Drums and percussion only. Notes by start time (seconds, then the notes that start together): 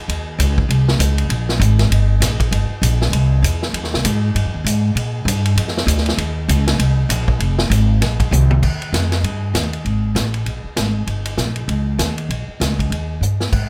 0.09 ride
0.40 hi-hat pedal, ride
0.58 kick
0.70 ride
0.88 snare
1.00 hi-hat pedal, ride
1.18 ride
1.30 ride
1.49 snare
1.61 hi-hat pedal, ride
1.79 snare, ride
1.92 ride
2.22 snare, hi-hat pedal, ride
2.40 kick, ride
2.52 ride
2.83 hi-hat pedal, ride
3.02 snare
3.13 ride
3.44 hi-hat pedal, ride
3.62 snare
3.74 ride
3.84 snare
3.94 snare
4.05 hi-hat pedal, ride
4.36 ride
4.66 hi-hat pedal, ride
4.97 ride
5.28 hi-hat pedal, ride
5.46 ride
5.57 ride
5.68 snare
5.77 snare
5.88 hi-hat pedal, ride
5.98 snare
6.06 snare, ride
6.18 ride
6.49 hi-hat pedal, ride
6.67 snare, ride
6.80 ride
7.10 hi-hat pedal, ride
7.28 kick
7.40 ride
7.59 snare
7.71 hi-hat pedal, ride
8.02 snare, ride
8.20 kick, ride
8.32 hi-hat pedal, high tom
8.51 high tom
8.63 kick, crash
8.82 ride
8.94 snare, hi-hat pedal, ride
9.12 snare, ride
9.24 ride
9.55 snare, hi-hat pedal, ride
9.73 ride
9.86 ride
10.16 snare, hi-hat pedal, ride
10.34 ride
10.46 ride
10.77 snare, hi-hat pedal, ride
11.07 ride
11.26 ride
11.38 snare, hi-hat pedal
11.56 ride
11.69 ride
11.99 snare, hi-hat pedal, ride
12.18 ride
12.30 ride
12.61 snare, hi-hat pedal, ride
12.79 kick, ride
12.92 ride
13.22 hi-hat pedal
13.40 snare
13.53 kick, crash